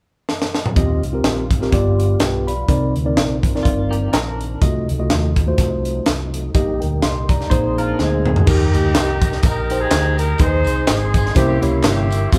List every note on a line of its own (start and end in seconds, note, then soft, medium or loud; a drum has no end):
0.29 snare medium
0.42 snare medium
0.55 snare medium
0.66 mid tom medium
0.76 0.99 D#2 medium
0.76 1.47 D#3 medium
0.76 1.72 D#3 medium
0.76 2.67 G3 medium
0.76 1.01 C4 medium
0.76 1.72 C4 medium
0.76 1.01 F4 medium
0.76 2.67 F4 medium
0.76 1.01 G4 medium
0.76 1.01 D#5 medium
0.76 kick loud
0.76 closed hi-hat medium
1.03 1.21 C2 medium
1.03 closed hi-hat medium
1.13 1.44 C4 medium
1.13 1.44 F4 medium
1.13 1.44 G4 medium
1.13 1.44 A#4 medium
1.24 1.66 A#1 medium
1.24 snare loud
1.24 closed hi-hat medium
1.51 kick medium
1.51 closed hi-hat medium
1.61 1.72 C4 medium
1.61 1.71 F4 medium
1.61 1.72 G4 medium
1.61 1.73 A#4 medium
1.61 snare soft
1.72 2.14 G1 loud
1.72 2.43 G2 medium
1.72 4.59 F3 medium
1.72 2.51 B3 medium
1.72 2.68 B3 medium
1.72 2.52 F4 medium
1.72 2.52 G4 medium
1.72 2.21 D5 medium
1.72 kick loud
1.72 snare soft
1.72 closed hi-hat medium
2.00 closed hi-hat medium
2.20 2.62 B1 medium
2.20 2.47 B4 soft
2.20 2.47 G5 medium
2.20 snare loud
2.20 closed hi-hat medium
2.47 2.68 D5 soft
2.47 2.93 B5 medium
2.47 closed hi-hat medium
2.68 2.91 C2 medium
2.68 3.39 C3 medium
2.68 4.60 D#3 medium
2.68 4.60 A#3 medium
2.68 2.93 C4 medium
2.68 4.60 C4 medium
2.68 2.93 D#4 medium
2.68 2.93 A#4 medium
2.68 2.94 D5 medium
2.68 kick loud
2.68 closed hi-hat medium
2.95 3.14 D2 medium
2.95 closed hi-hat medium
3.05 3.36 C4 medium
3.05 3.36 D#4 medium
3.05 3.37 A#4 medium
3.05 3.36 D5 medium
3.17 3.58 A#1 medium
3.17 snare loud
3.17 closed hi-hat medium
3.43 kick medium
3.43 closed hi-hat medium
3.55 4.13 C4 medium
3.55 4.13 D#4 medium
3.55 4.13 A#4 medium
3.55 4.14 D5 medium
3.55 snare soft
3.63 4.06 G1 medium
3.63 3.89 F4 medium
3.63 kick loud
3.63 closed hi-hat medium
3.90 4.11 A#3 medium
3.90 4.11 G4 medium
3.90 closed hi-hat medium
4.13 4.54 A#1 medium
4.13 4.59 D4 medium
4.13 4.59 A#4 medium
4.13 snare loud
4.13 closed hi-hat loud
4.41 closed hi-hat medium
4.60 4.84 C2 medium
4.60 5.33 C3 medium
4.60 6.52 F3 medium
4.60 6.52 F#3 medium
4.60 6.52 A3 medium
4.60 4.86 A3 medium
4.60 8.43 D#4 medium
4.60 4.86 F4 medium
4.60 4.87 F#4 medium
4.60 4.87 D#5 medium
4.60 kick loud
4.60 closed hi-hat medium
4.89 5.07 C#2 medium
4.89 closed hi-hat medium
4.99 5.29 A3 medium
4.99 5.30 F4 medium
4.99 5.30 F#4 medium
4.99 5.30 D#5 medium
5.10 5.51 D#2 medium
5.10 snare loud
5.10 closed hi-hat medium
5.36 kick medium
5.36 closed hi-hat medium
5.47 6.06 A3 medium
5.47 6.06 F4 medium
5.47 6.06 F#4 medium
5.47 6.06 C5 medium
5.58 5.99 C2 loud
5.58 kick medium
5.58 snare soft
5.58 closed hi-hat medium
5.85 closed hi-hat medium
6.06 6.48 C2 medium
6.06 snare loud
6.06 closed hi-hat medium
6.34 closed hi-hat medium
6.54 6.77 A#1 medium
6.54 7.25 A#2 medium
6.54 7.50 G3 medium
6.54 6.79 A#3 medium
6.54 8.46 A#3 medium
6.54 6.79 D#4 medium
6.54 7.49 G4 medium
6.54 6.79 G4 medium
6.54 6.79 D#5 medium
6.54 kick loud
6.54 closed hi-hat medium
6.80 7.00 D2 medium
6.80 7.01 A#4 soft
6.80 7.01 G5 medium
6.80 closed hi-hat medium
7.02 7.44 C2 medium
7.02 7.28 D#5 medium
7.02 7.28 C6 medium
7.02 snare medium
7.02 closed hi-hat medium
7.29 7.75 D5 medium
7.29 7.75 A#5 medium
7.29 kick medium
7.29 closed hi-hat medium
7.41 snare soft
7.50 7.92 A#1 medium
7.50 8.21 A#2 medium
7.50 8.29 A#3 medium
7.50 8.46 C4 medium
7.50 8.30 D#4 medium
7.50 7.76 D#4 medium
7.50 8.46 G#4 medium
7.50 8.30 G#4 medium
7.50 7.76 C5 medium
7.50 8.30 C5 medium
7.50 kick loud
7.50 closed hi-hat medium
7.78 7.99 D4 medium
7.78 7.98 F4 medium
7.78 7.98 A#4 medium
7.78 closed hi-hat medium
7.99 8.40 D2 medium
7.99 8.45 G#3 medium
7.99 8.44 C4 medium
7.99 8.44 D#4 medium
7.99 8.45 F4 medium
7.99 8.48 G#4 medium
7.99 snare medium
8.26 mid tom medium
8.36 floor tom medium
8.46 8.70 D#2 loud
8.46 9.18 D#3 medium
8.46 9.39 A#3 medium
8.46 9.08 D#4 medium
8.46 9.40 D#4 medium
8.46 9.08 G4 medium
8.46 9.43 G4 loud
8.46 9.08 A#4 medium
8.46 10.39 A#4 medium
8.46 11.34 D#5 medium
8.46 10.39 G5 medium
8.46 10.39 A#5 medium
8.46 kick loud
8.46 crash medium
8.46 tambourine medium
8.73 8.92 D2 loud
8.73 closed hi-hat medium
8.73 tambourine medium
8.95 9.36 C2 medium
8.95 snare loud
8.95 clap medium
8.95 closed hi-hat medium
8.95 tambourine medium
9.22 kick loud
9.22 closed hi-hat medium
9.22 tambourine medium
9.32 snare soft
9.43 9.84 A#1 medium
9.43 9.80 D#4 medium
9.43 10.36 G4 medium
9.43 9.81 A#4 loud
9.43 kick loud
9.43 snare soft
9.43 closed hi-hat medium
9.43 tambourine medium
9.70 10.15 D#4 medium
9.70 10.15 C5 medium
9.70 10.15 G5 medium
9.70 closed hi-hat medium
9.70 tambourine medium
9.81 10.36 D#4 medium
9.81 10.18 G#4 loud
9.91 10.32 D2 loud
9.91 snare loud
9.91 clap medium
9.91 closed hi-hat medium
9.91 tambourine medium
10.18 10.38 A#4 loud
10.18 closed hi-hat medium
10.18 tambourine medium
10.38 10.63 D#2 loud
10.38 11.11 D#3 medium
10.38 11.01 D#4 medium
10.38 10.87 D#4 medium
10.38 11.35 G#4 medium
10.38 11.01 G#4 medium
10.38 10.87 G#4 medium
10.38 10.47 B4 medium
10.38 11.35 C5 medium
10.38 10.89 C5 loud
10.38 12.38 C6 medium
10.38 kick loud
10.38 closed hi-hat medium
10.38 tambourine medium
10.47 11.04 C5 medium
10.64 10.84 C2 medium
10.64 closed hi-hat medium
10.64 tambourine medium
10.87 11.29 G#1 medium
10.87 11.33 C4 medium
10.87 11.33 D#4 medium
10.87 11.33 G#4 medium
10.87 snare loud
10.87 clap loud
10.87 closed hi-hat medium
10.87 tambourine medium
11.14 kick medium
11.14 closed hi-hat medium
11.14 tambourine medium
11.26 snare soft
11.35 11.59 C2 loud
11.35 12.07 C3 medium
11.35 11.57 A#3 medium
11.35 11.85 A#3 medium
11.35 11.57 C#4 medium
11.35 11.57 E4 medium
11.35 11.61 E4 medium
11.35 11.57 G4 medium
11.35 11.63 G4 loud
11.35 12.31 A#4 medium
11.35 11.58 C5 medium
11.35 12.32 C#5 medium
11.35 12.32 E5 medium
11.35 kick loud
11.35 snare soft
11.35 closed hi-hat medium
11.35 tambourine medium
11.62 11.81 C#2 medium
11.62 12.07 A#3 medium
11.62 12.07 C#4 medium
11.62 11.84 E4 medium
11.62 12.07 E4 medium
11.62 12.07 G4 medium
11.62 12.07 C#5 medium
11.62 closed hi-hat medium
11.62 tambourine medium
11.83 12.25 G1 loud
11.83 12.30 A#3 medium
11.83 12.30 E4 medium
11.83 12.30 G4 loud
11.83 snare loud
11.83 clap medium
11.83 closed hi-hat loud
11.83 tambourine medium
12.10 closed hi-hat medium
12.10 tambourine medium
12.32 12.38 F1 loud
12.32 12.38 G#3 medium
12.32 12.38 C4 medium
12.32 12.38 F4 medium
12.32 12.38 G4 medium
12.32 12.38 G#4 medium
12.32 12.38 C5 medium
12.32 12.38 F5 medium
12.32 kick loud
12.32 closed hi-hat medium
12.32 tambourine medium